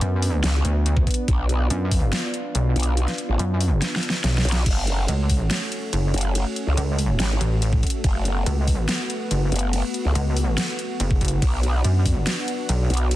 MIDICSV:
0, 0, Header, 1, 5, 480
1, 0, Start_track
1, 0, Key_signature, 3, "minor"
1, 0, Tempo, 422535
1, 1455, Time_signature, 4, 2, 24, 8
1, 14947, End_track
2, 0, Start_track
2, 0, Title_t, "Analog synth pad"
2, 0, Program_c, 0, 89
2, 0, Note_on_c, 0, 59, 85
2, 0, Note_on_c, 0, 62, 78
2, 0, Note_on_c, 0, 66, 94
2, 1417, Note_off_c, 0, 66, 0
2, 1455, Note_on_c, 0, 65, 91
2, 5250, Note_off_c, 0, 59, 0
2, 5250, Note_off_c, 0, 62, 0
2, 5257, Note_off_c, 0, 65, 0
2, 5295, Note_on_c, 0, 57, 83
2, 5295, Note_on_c, 0, 61, 77
2, 5295, Note_on_c, 0, 66, 92
2, 9097, Note_off_c, 0, 61, 0
2, 9135, Note_on_c, 0, 59, 78
2, 12930, Note_off_c, 0, 57, 0
2, 12937, Note_off_c, 0, 59, 0
2, 12975, Note_on_c, 0, 59, 84
2, 12975, Note_on_c, 0, 62, 76
2, 14947, Note_off_c, 0, 59, 0
2, 14947, Note_off_c, 0, 62, 0
2, 14947, Note_off_c, 0, 66, 0
2, 14947, End_track
3, 0, Start_track
3, 0, Title_t, "Wobble bass"
3, 0, Program_c, 1, 39
3, 16, Note_on_c, 1, 42, 104
3, 477, Note_off_c, 1, 42, 0
3, 735, Note_on_c, 1, 38, 103
3, 1196, Note_off_c, 1, 38, 0
3, 1935, Note_on_c, 1, 42, 103
3, 2397, Note_off_c, 1, 42, 0
3, 2895, Note_on_c, 1, 35, 100
3, 3116, Note_off_c, 1, 35, 0
3, 3855, Note_on_c, 1, 42, 97
3, 4317, Note_off_c, 1, 42, 0
3, 4815, Note_on_c, 1, 35, 97
3, 5037, Note_off_c, 1, 35, 0
3, 5775, Note_on_c, 1, 37, 101
3, 6237, Note_off_c, 1, 37, 0
3, 6735, Note_on_c, 1, 30, 99
3, 6957, Note_off_c, 1, 30, 0
3, 7695, Note_on_c, 1, 37, 101
3, 8156, Note_off_c, 1, 37, 0
3, 8415, Note_on_c, 1, 33, 103
3, 8877, Note_off_c, 1, 33, 0
3, 9615, Note_on_c, 1, 37, 99
3, 10076, Note_off_c, 1, 37, 0
3, 10575, Note_on_c, 1, 30, 99
3, 10796, Note_off_c, 1, 30, 0
3, 11535, Note_on_c, 1, 37, 100
3, 11997, Note_off_c, 1, 37, 0
3, 12495, Note_on_c, 1, 30, 100
3, 12957, Note_off_c, 1, 30, 0
3, 13455, Note_on_c, 1, 42, 99
3, 13917, Note_off_c, 1, 42, 0
3, 14415, Note_on_c, 1, 35, 97
3, 14636, Note_off_c, 1, 35, 0
3, 14947, End_track
4, 0, Start_track
4, 0, Title_t, "Wobble bass"
4, 0, Program_c, 2, 39
4, 496, Note_on_c, 2, 37, 95
4, 717, Note_off_c, 2, 37, 0
4, 1455, Note_on_c, 2, 35, 95
4, 1917, Note_off_c, 2, 35, 0
4, 3136, Note_on_c, 2, 35, 95
4, 3478, Note_off_c, 2, 35, 0
4, 3737, Note_on_c, 2, 33, 99
4, 3836, Note_off_c, 2, 33, 0
4, 5055, Note_on_c, 2, 35, 97
4, 5277, Note_off_c, 2, 35, 0
4, 5296, Note_on_c, 2, 30, 95
4, 5757, Note_off_c, 2, 30, 0
4, 6976, Note_on_c, 2, 30, 93
4, 7318, Note_off_c, 2, 30, 0
4, 7577, Note_on_c, 2, 37, 99
4, 7677, Note_off_c, 2, 37, 0
4, 8175, Note_on_c, 2, 32, 99
4, 8397, Note_off_c, 2, 32, 0
4, 9135, Note_on_c, 2, 30, 97
4, 9597, Note_off_c, 2, 30, 0
4, 10815, Note_on_c, 2, 30, 100
4, 11158, Note_off_c, 2, 30, 0
4, 11418, Note_on_c, 2, 37, 102
4, 11517, Note_off_c, 2, 37, 0
4, 12975, Note_on_c, 2, 35, 94
4, 13437, Note_off_c, 2, 35, 0
4, 14656, Note_on_c, 2, 35, 94
4, 14947, Note_off_c, 2, 35, 0
4, 14947, End_track
5, 0, Start_track
5, 0, Title_t, "Drums"
5, 15, Note_on_c, 9, 42, 77
5, 129, Note_off_c, 9, 42, 0
5, 255, Note_on_c, 9, 46, 92
5, 369, Note_off_c, 9, 46, 0
5, 495, Note_on_c, 9, 38, 115
5, 495, Note_on_c, 9, 42, 74
5, 609, Note_off_c, 9, 38, 0
5, 609, Note_off_c, 9, 42, 0
5, 735, Note_on_c, 9, 42, 53
5, 849, Note_off_c, 9, 42, 0
5, 975, Note_on_c, 9, 42, 80
5, 1089, Note_off_c, 9, 42, 0
5, 1097, Note_on_c, 9, 36, 107
5, 1211, Note_off_c, 9, 36, 0
5, 1215, Note_on_c, 9, 36, 62
5, 1215, Note_on_c, 9, 42, 47
5, 1256, Note_off_c, 9, 42, 0
5, 1256, Note_on_c, 9, 42, 63
5, 1295, Note_off_c, 9, 42, 0
5, 1295, Note_on_c, 9, 42, 78
5, 1329, Note_off_c, 9, 36, 0
5, 1409, Note_off_c, 9, 42, 0
5, 1455, Note_on_c, 9, 36, 120
5, 1456, Note_on_c, 9, 42, 80
5, 1569, Note_off_c, 9, 36, 0
5, 1569, Note_off_c, 9, 42, 0
5, 1695, Note_on_c, 9, 42, 52
5, 1809, Note_off_c, 9, 42, 0
5, 1935, Note_on_c, 9, 42, 80
5, 2049, Note_off_c, 9, 42, 0
5, 2175, Note_on_c, 9, 36, 59
5, 2175, Note_on_c, 9, 46, 98
5, 2288, Note_off_c, 9, 46, 0
5, 2289, Note_off_c, 9, 36, 0
5, 2415, Note_on_c, 9, 38, 117
5, 2415, Note_on_c, 9, 42, 81
5, 2529, Note_off_c, 9, 38, 0
5, 2529, Note_off_c, 9, 42, 0
5, 2655, Note_on_c, 9, 42, 52
5, 2769, Note_off_c, 9, 42, 0
5, 2895, Note_on_c, 9, 42, 78
5, 3009, Note_off_c, 9, 42, 0
5, 3135, Note_on_c, 9, 42, 50
5, 3176, Note_off_c, 9, 42, 0
5, 3176, Note_on_c, 9, 42, 63
5, 3215, Note_off_c, 9, 42, 0
5, 3215, Note_on_c, 9, 42, 80
5, 3329, Note_off_c, 9, 42, 0
5, 3376, Note_on_c, 9, 42, 81
5, 3489, Note_off_c, 9, 42, 0
5, 3498, Note_on_c, 9, 38, 36
5, 3498, Note_on_c, 9, 42, 37
5, 3612, Note_off_c, 9, 38, 0
5, 3612, Note_off_c, 9, 42, 0
5, 3616, Note_on_c, 9, 42, 55
5, 3729, Note_off_c, 9, 42, 0
5, 3856, Note_on_c, 9, 42, 83
5, 3970, Note_off_c, 9, 42, 0
5, 4096, Note_on_c, 9, 46, 94
5, 4209, Note_off_c, 9, 46, 0
5, 4336, Note_on_c, 9, 38, 70
5, 4336, Note_on_c, 9, 42, 81
5, 4450, Note_off_c, 9, 38, 0
5, 4450, Note_off_c, 9, 42, 0
5, 4496, Note_on_c, 9, 38, 76
5, 4576, Note_on_c, 9, 42, 55
5, 4609, Note_off_c, 9, 38, 0
5, 4656, Note_on_c, 9, 38, 85
5, 4690, Note_off_c, 9, 42, 0
5, 4769, Note_off_c, 9, 38, 0
5, 4815, Note_on_c, 9, 38, 93
5, 4815, Note_on_c, 9, 42, 81
5, 4929, Note_off_c, 9, 38, 0
5, 4929, Note_off_c, 9, 42, 0
5, 4975, Note_on_c, 9, 38, 94
5, 5055, Note_on_c, 9, 42, 50
5, 5089, Note_off_c, 9, 38, 0
5, 5096, Note_off_c, 9, 42, 0
5, 5096, Note_on_c, 9, 42, 67
5, 5135, Note_off_c, 9, 42, 0
5, 5135, Note_on_c, 9, 38, 102
5, 5135, Note_on_c, 9, 42, 83
5, 5249, Note_off_c, 9, 38, 0
5, 5249, Note_off_c, 9, 42, 0
5, 5295, Note_on_c, 9, 42, 86
5, 5295, Note_on_c, 9, 49, 78
5, 5295, Note_on_c, 9, 51, 68
5, 5296, Note_on_c, 9, 36, 118
5, 5409, Note_off_c, 9, 36, 0
5, 5409, Note_off_c, 9, 42, 0
5, 5409, Note_off_c, 9, 49, 0
5, 5409, Note_off_c, 9, 51, 0
5, 5535, Note_on_c, 9, 42, 57
5, 5649, Note_off_c, 9, 42, 0
5, 5776, Note_on_c, 9, 42, 84
5, 5776, Note_on_c, 9, 51, 46
5, 5889, Note_off_c, 9, 42, 0
5, 5889, Note_off_c, 9, 51, 0
5, 6015, Note_on_c, 9, 46, 97
5, 6016, Note_on_c, 9, 36, 64
5, 6129, Note_off_c, 9, 36, 0
5, 6129, Note_off_c, 9, 46, 0
5, 6256, Note_on_c, 9, 38, 120
5, 6256, Note_on_c, 9, 42, 83
5, 6256, Note_on_c, 9, 51, 67
5, 6369, Note_off_c, 9, 38, 0
5, 6369, Note_off_c, 9, 42, 0
5, 6369, Note_off_c, 9, 51, 0
5, 6496, Note_on_c, 9, 42, 57
5, 6609, Note_off_c, 9, 42, 0
5, 6735, Note_on_c, 9, 42, 84
5, 6735, Note_on_c, 9, 51, 47
5, 6849, Note_off_c, 9, 42, 0
5, 6849, Note_off_c, 9, 51, 0
5, 6975, Note_on_c, 9, 42, 52
5, 7016, Note_off_c, 9, 42, 0
5, 7016, Note_on_c, 9, 42, 67
5, 7055, Note_off_c, 9, 42, 0
5, 7055, Note_on_c, 9, 42, 84
5, 7169, Note_off_c, 9, 42, 0
5, 7216, Note_on_c, 9, 42, 86
5, 7216, Note_on_c, 9, 51, 62
5, 7329, Note_off_c, 9, 42, 0
5, 7329, Note_off_c, 9, 51, 0
5, 7456, Note_on_c, 9, 42, 55
5, 7569, Note_off_c, 9, 42, 0
5, 7696, Note_on_c, 9, 42, 82
5, 7696, Note_on_c, 9, 51, 44
5, 7809, Note_off_c, 9, 42, 0
5, 7809, Note_off_c, 9, 51, 0
5, 7935, Note_on_c, 9, 46, 95
5, 8049, Note_off_c, 9, 46, 0
5, 8176, Note_on_c, 9, 38, 126
5, 8176, Note_on_c, 9, 42, 85
5, 8176, Note_on_c, 9, 51, 62
5, 8289, Note_off_c, 9, 38, 0
5, 8289, Note_off_c, 9, 42, 0
5, 8289, Note_off_c, 9, 51, 0
5, 8415, Note_on_c, 9, 42, 56
5, 8529, Note_off_c, 9, 42, 0
5, 8656, Note_on_c, 9, 42, 88
5, 8656, Note_on_c, 9, 51, 46
5, 8769, Note_off_c, 9, 42, 0
5, 8769, Note_off_c, 9, 51, 0
5, 8778, Note_on_c, 9, 36, 114
5, 8891, Note_off_c, 9, 36, 0
5, 8895, Note_on_c, 9, 36, 66
5, 8895, Note_on_c, 9, 42, 52
5, 8936, Note_off_c, 9, 42, 0
5, 8936, Note_on_c, 9, 42, 69
5, 8975, Note_off_c, 9, 42, 0
5, 8975, Note_on_c, 9, 42, 85
5, 9009, Note_off_c, 9, 36, 0
5, 9089, Note_off_c, 9, 42, 0
5, 9135, Note_on_c, 9, 36, 127
5, 9135, Note_on_c, 9, 42, 82
5, 9135, Note_on_c, 9, 51, 63
5, 9248, Note_off_c, 9, 42, 0
5, 9248, Note_off_c, 9, 51, 0
5, 9249, Note_off_c, 9, 36, 0
5, 9375, Note_on_c, 9, 42, 57
5, 9488, Note_off_c, 9, 42, 0
5, 9615, Note_on_c, 9, 42, 84
5, 9615, Note_on_c, 9, 51, 45
5, 9728, Note_off_c, 9, 42, 0
5, 9728, Note_off_c, 9, 51, 0
5, 9855, Note_on_c, 9, 36, 69
5, 9855, Note_on_c, 9, 46, 88
5, 9969, Note_off_c, 9, 36, 0
5, 9969, Note_off_c, 9, 46, 0
5, 10095, Note_on_c, 9, 38, 127
5, 10095, Note_on_c, 9, 42, 84
5, 10095, Note_on_c, 9, 51, 62
5, 10209, Note_off_c, 9, 38, 0
5, 10209, Note_off_c, 9, 42, 0
5, 10209, Note_off_c, 9, 51, 0
5, 10335, Note_on_c, 9, 42, 55
5, 10449, Note_off_c, 9, 42, 0
5, 10575, Note_on_c, 9, 42, 84
5, 10575, Note_on_c, 9, 51, 46
5, 10689, Note_off_c, 9, 42, 0
5, 10689, Note_off_c, 9, 51, 0
5, 10815, Note_on_c, 9, 42, 51
5, 10856, Note_off_c, 9, 42, 0
5, 10856, Note_on_c, 9, 42, 67
5, 10895, Note_off_c, 9, 42, 0
5, 10895, Note_on_c, 9, 42, 82
5, 11008, Note_off_c, 9, 42, 0
5, 11055, Note_on_c, 9, 42, 80
5, 11055, Note_on_c, 9, 51, 65
5, 11168, Note_off_c, 9, 42, 0
5, 11168, Note_off_c, 9, 51, 0
5, 11295, Note_on_c, 9, 42, 50
5, 11408, Note_off_c, 9, 42, 0
5, 11535, Note_on_c, 9, 42, 80
5, 11535, Note_on_c, 9, 51, 45
5, 11648, Note_off_c, 9, 42, 0
5, 11648, Note_off_c, 9, 51, 0
5, 11775, Note_on_c, 9, 46, 87
5, 11889, Note_off_c, 9, 46, 0
5, 12015, Note_on_c, 9, 38, 126
5, 12015, Note_on_c, 9, 42, 80
5, 12015, Note_on_c, 9, 51, 63
5, 12129, Note_off_c, 9, 38, 0
5, 12129, Note_off_c, 9, 42, 0
5, 12129, Note_off_c, 9, 51, 0
5, 12255, Note_on_c, 9, 42, 53
5, 12369, Note_off_c, 9, 42, 0
5, 12495, Note_on_c, 9, 42, 81
5, 12495, Note_on_c, 9, 51, 46
5, 12609, Note_off_c, 9, 42, 0
5, 12609, Note_off_c, 9, 51, 0
5, 12618, Note_on_c, 9, 36, 117
5, 12731, Note_off_c, 9, 36, 0
5, 12735, Note_on_c, 9, 36, 65
5, 12735, Note_on_c, 9, 42, 49
5, 12776, Note_off_c, 9, 42, 0
5, 12776, Note_on_c, 9, 42, 64
5, 12815, Note_off_c, 9, 42, 0
5, 12815, Note_on_c, 9, 42, 83
5, 12849, Note_off_c, 9, 36, 0
5, 12929, Note_off_c, 9, 42, 0
5, 12975, Note_on_c, 9, 36, 125
5, 12976, Note_on_c, 9, 42, 77
5, 12976, Note_on_c, 9, 51, 69
5, 13089, Note_off_c, 9, 36, 0
5, 13089, Note_off_c, 9, 42, 0
5, 13089, Note_off_c, 9, 51, 0
5, 13216, Note_on_c, 9, 42, 52
5, 13329, Note_off_c, 9, 42, 0
5, 13456, Note_on_c, 9, 42, 77
5, 13456, Note_on_c, 9, 51, 46
5, 13569, Note_off_c, 9, 42, 0
5, 13569, Note_off_c, 9, 51, 0
5, 13695, Note_on_c, 9, 36, 64
5, 13696, Note_on_c, 9, 46, 89
5, 13809, Note_off_c, 9, 36, 0
5, 13809, Note_off_c, 9, 46, 0
5, 13936, Note_on_c, 9, 38, 121
5, 13936, Note_on_c, 9, 42, 78
5, 13936, Note_on_c, 9, 51, 66
5, 14049, Note_off_c, 9, 38, 0
5, 14049, Note_off_c, 9, 42, 0
5, 14049, Note_off_c, 9, 51, 0
5, 14176, Note_on_c, 9, 42, 52
5, 14289, Note_off_c, 9, 42, 0
5, 14416, Note_on_c, 9, 42, 80
5, 14416, Note_on_c, 9, 51, 49
5, 14529, Note_off_c, 9, 42, 0
5, 14529, Note_off_c, 9, 51, 0
5, 14655, Note_on_c, 9, 42, 49
5, 14696, Note_off_c, 9, 42, 0
5, 14696, Note_on_c, 9, 42, 64
5, 14735, Note_off_c, 9, 42, 0
5, 14735, Note_on_c, 9, 42, 78
5, 14849, Note_off_c, 9, 42, 0
5, 14895, Note_on_c, 9, 42, 77
5, 14895, Note_on_c, 9, 51, 70
5, 14947, Note_off_c, 9, 42, 0
5, 14947, Note_off_c, 9, 51, 0
5, 14947, End_track
0, 0, End_of_file